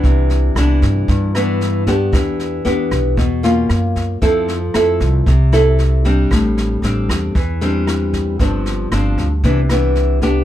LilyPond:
<<
  \new Staff \with { instrumentName = "Nylon-string guitar" } { \time 4/4 \key c \major \tempo 4 = 115 << { <e b d'>4 <e b d'>4. <e b d'>4 <b d' g'>8~ | <b d' g'>4 <b d' g'>4 r8 <bes des' f'>4. | <c' e' a'>8 r8 <c' e' a'>4 r8 <c' e' a'>4 <g c' d'>8~ | <g c' d'>4 <g c' d'>4 r8 <g c' d'>4. |
<f c' d'>4 <f c' d'>8 r8 <e b d'>8 <e b d'>4 <b d' g'>8 | } \\ { c2 g,2 | e2 b,4 r4 | f2 c2 | a,2 e2 |
g,2 c2 | } >> }
  \new Staff \with { instrumentName = "Upright bass" } { \clef bass \time 4/4 \key c \major c,4 c,8 g,8 g,2 | e,4 e,8 b,,8 e,4 fis,4 | f,4 f,8 c,8 c,2 | a,,4 a,,8 e,8 e,2 |
g,,4 g,,8 d,8 c,2 | }
  \new DrumStaff \with { instrumentName = "Drums" } \drummode { \time 4/4 <bd sn>8 sn8 <ss sn>8 <bd sn>8 <bd sn>8 <ss sn>8 sn8 <bd sn>8 | <bd ss sn>8 sn8 sn8 <bd ss sn>8 <bd sn>8 sn8 <ss sn>8 <bd sn>8 | <bd sn>8 sn8 <ss sn>8 <bd sn>8 <bd sn>8 <ss sn>8 sn8 <bd sn>8 | <bd ss sn>8 sn8 sn8 <bd ss sn>8 <bd sn>8 sn8 <ss sn>8 <bd sn>8 |
<bd sn>8 sn8 <ss sn>8 <bd sn>8 <bd sn>8 <ss sn>8 sn8 <bd sn>8 | }
>>